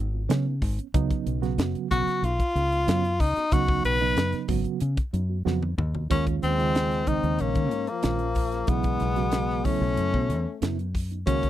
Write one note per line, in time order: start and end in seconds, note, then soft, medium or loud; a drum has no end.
0.00 0.28 G#1 medium
0.14 0.22 B3 soft
0.14 0.22 F4 soft
0.29 0.45 C#3 medium
0.29 0.60 C#3 loud
0.29 0.44 F#3 medium
0.29 0.45 B3 medium
0.29 0.45 C#4 medium
0.29 snare loud
0.29 closed hi-hat medium
0.46 0.54 B3 soft
0.46 0.54 D#4 soft
0.62 0.77 G#1 loud
0.62 kick medium
0.62 open hi-hat medium
0.78 0.86 B3 soft
0.78 0.86 C#4 soft
0.78 closed hi-hat soft
0.94 1.10 C#2 medium
0.94 1.39 C#3 loud
0.94 1.39 F#3 loud
0.94 1.39 B3 loud
0.94 1.39 D#4 loud
0.94 kick loud
0.94 closed hi-hat medium
1.10 kick medium
1.10 closed hi-hat soft
1.27 1.57 B1 medium
1.27 closed hi-hat medium
1.42 1.87 C#3 medium
1.42 1.87 F#3 medium
1.42 1.87 B3 medium
1.42 1.87 F#4 loud
1.42 snare soft
1.42 closed hi-hat soft
1.58 1.74 F#2 loud
1.58 snare loud
1.58 closed hi-hat medium
1.75 muted fingered electric bass stroke soft
1.75 closed hi-hat soft
1.91 2.06 B1 medium
1.91 2.21 C#3 medium
1.91 2.21 F#3 medium
1.91 2.21 B3 medium
1.91 2.21 F#4 medium
1.91 2.26 F#4 loud
1.91 kick medium
1.91 closed hi-hat medium
2.07 muted fingered electric bass stroke soft
2.07 snare soft
2.07 closed hi-hat soft
2.23 2.38 B1 medium
2.23 2.32 B3 soft
2.23 2.31 D#4 soft
2.23 3.22 F4 loud
2.23 closed hi-hat medium
2.40 kick medium
2.40 closed hi-hat soft
2.55 2.86 C#2 medium
2.55 2.64 B3 soft
2.55 2.64 D#4 soft
2.55 closed hi-hat medium
2.72 2.79 B3 soft
2.72 2.80 D#4 soft
2.72 closed hi-hat soft
2.87 3.18 F#2 loud
2.87 3.03 C#3 medium
2.87 3.03 F#3 medium
2.87 3.02 B3 medium
2.87 3.03 C#4 medium
2.87 snare loud
2.87 closed hi-hat medium
3.04 3.12 B3 soft
3.04 3.12 D#4 soft
3.04 closed hi-hat soft
3.20 3.35 C#2 medium
3.20 3.55 D#4 loud
3.20 kick medium
3.20 open hi-hat medium
3.36 3.44 B3 soft
3.36 3.44 F#4 soft
3.36 muted fingered electric bass stroke soft
3.36 snare soft
3.36 closed hi-hat soft
3.52 3.83 C#2 medium
3.52 3.97 C#3 medium
3.52 3.98 F#3 medium
3.52 3.97 B3 medium
3.52 3.98 D#4 loud
3.52 3.85 F#4 loud
3.52 kick loud
3.52 closed hi-hat medium
3.68 kick medium
3.85 4.15 B1 medium
3.85 4.46 B4 loud
3.85 closed hi-hat medium
4.01 4.46 C#3 medium
4.01 4.46 F#3 medium
4.01 4.46 B3 medium
4.01 4.46 D#4 medium
4.17 4.32 F#2 medium
4.17 snare loud
4.17 closed hi-hat medium
4.32 muted fingered electric bass stroke soft
4.32 snare soft
4.32 closed hi-hat soft
4.48 4.64 G#1 medium
4.48 4.79 C#3 medium
4.48 4.79 F#3 medium
4.48 4.79 B3 medium
4.48 4.79 F#4 medium
4.48 kick medium
4.48 open hi-hat medium
4.64 closed hi-hat soft
4.80 4.97 C#3 medium
4.80 4.89 B3 soft
4.80 4.89 C#4 soft
4.80 closed hi-hat medium
4.97 kick medium
4.97 closed hi-hat soft
5.13 5.43 F#2 medium
5.13 5.21 B3 soft
5.13 5.21 D#4 soft
5.13 closed hi-hat medium
5.30 5.37 B3 soft
5.30 5.38 F#4 soft
5.45 5.75 F2 medium
5.45 5.60 C#3 medium
5.45 5.61 F#3 medium
5.45 5.61 B3 medium
5.45 5.61 F#4 loud
5.45 snare medium
5.62 high tom medium
5.78 6.07 D#2 medium
5.78 mid tom medium
5.94 6.02 B3 soft
5.94 6.02 F#4 soft
5.94 floor tom medium
6.10 6.41 D#2 medium
6.10 6.55 D#3 medium
6.10 6.55 G#3 medium
6.10 6.27 A#3 medium
6.10 6.55 C#4 medium
6.10 6.25 C#4 medium
6.10 6.55 F4 medium
6.10 kick medium
6.10 closed hi-hat medium
6.26 kick medium
6.26 closed hi-hat soft
6.43 7.20 D#2 medium
6.43 7.10 G#3 medium
6.43 7.09 C4 loud
6.43 closed hi-hat medium
6.58 7.04 C#3 medium
6.58 7.04 D#3 medium
6.58 7.04 G#3 medium
6.58 7.03 F4 medium
6.58 closed hi-hat soft
6.75 snare medium
6.75 closed hi-hat medium
6.91 snare soft
6.91 closed hi-hat soft
7.07 7.67 C#3 medium
7.07 7.67 D#3 medium
7.07 7.67 G#3 medium
7.07 7.43 C4 medium
7.07 7.67 D#4 medium
7.07 7.42 D#4 medium
7.07 kick medium
7.07 closed hi-hat medium
7.23 7.39 D#2 medium
7.23 closed hi-hat soft
7.39 7.55 A#1 medium
7.39 7.92 A#3 medium
7.39 7.90 C#4 medium
7.39 closed hi-hat medium
7.55 7.72 D#3 medium
7.55 kick medium
7.55 closed hi-hat soft
7.71 7.87 G#2 medium
7.71 7.80 C#4 soft
7.71 7.80 F4 soft
7.71 closed hi-hat soft
7.87 8.71 F3 medium
7.87 8.71 A#3 medium
7.87 closed hi-hat soft
8.03 8.65 A#1 medium
8.03 8.19 D#3 medium
8.03 8.19 G#3 medium
8.03 8.19 C#4 medium
8.03 8.19 F4 medium
8.03 snare loud
8.03 closed hi-hat medium
8.19 8.28 C#4 soft
8.19 8.28 F4 soft
8.19 closed hi-hat soft
8.35 kick medium
8.35 open hi-hat medium
8.52 8.60 C#4 soft
8.52 8.60 G#4 soft
8.52 snare soft
8.52 closed hi-hat soft
8.67 8.99 B1 medium
8.67 9.13 C#3 medium
8.67 9.13 F#3 medium
8.67 9.68 G#3 medium
8.67 9.13 B3 medium
8.67 9.67 B3 medium
8.67 9.13 E4 medium
8.67 kick loud
8.67 closed hi-hat medium
8.83 kick medium
8.83 closed hi-hat soft
9.00 9.78 B1 medium
9.00 snare soft
9.00 closed hi-hat medium
9.16 9.62 C#3 medium
9.16 9.62 F#3 medium
9.16 9.62 B3 medium
9.16 9.62 F#4 medium
9.16 snare soft
9.16 closed hi-hat soft
9.32 snare medium
9.32 closed hi-hat medium
9.49 snare soft
9.65 10.25 C#3 medium
9.65 10.25 F#3 medium
9.65 10.63 A3 medium
9.65 10.25 B3 medium
9.65 10.62 C#4 medium
9.65 10.25 E4 medium
9.65 kick medium
9.65 open hi-hat medium
9.81 9.97 B1 medium
9.97 10.13 F#2 medium
9.97 closed hi-hat medium
10.14 10.31 B2 medium
10.14 kick medium
10.28 10.45 E2 medium
10.28 10.37 B3 soft
10.28 10.37 D#4 soft
10.28 closed hi-hat medium
10.61 11.23 F#2 medium
10.61 10.77 C#3 medium
10.61 10.77 F#3 medium
10.61 10.77 B3 medium
10.61 10.77 E4 medium
10.61 snare loud
10.61 closed hi-hat medium
10.78 10.86 B3 soft
10.78 10.86 C#4 soft
10.78 closed hi-hat soft
10.95 kick medium
10.95 open hi-hat medium
11.11 11.19 B3 soft
11.11 11.19 D#4 soft
11.11 closed hi-hat soft
11.26 11.50 C#2 medium
11.26 11.50 D#3 medium
11.26 11.50 G#3 medium
11.26 11.50 A#3 medium
11.26 11.50 C#4 loud
11.26 11.50 C#4 medium
11.26 11.50 F#4 medium
11.26 kick loud
11.26 closed hi-hat medium
11.43 kick medium
11.43 closed hi-hat soft